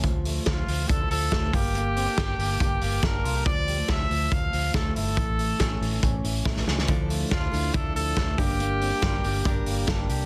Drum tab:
HH |x-o-x-o-x-o-x-o-|x-o-x-o-x-o-x-o-|x-o-x-o-x-o-x-o-|x-o-x-o-x-o-----|
SD |----o-------o---|----o-------o---|----o-------o---|----o-------oooo|
BD |o---o---o---o-o-|----o---o---o---|o---o---o---o---|o---o---o---o---|

HH |x-o-x-o-x-o-x-o-|x-o-x-o-x-o-x-o-|
SD |----o-------o---|----o-------o---|
BD |o---o---o---o-o-|----o---o---o---|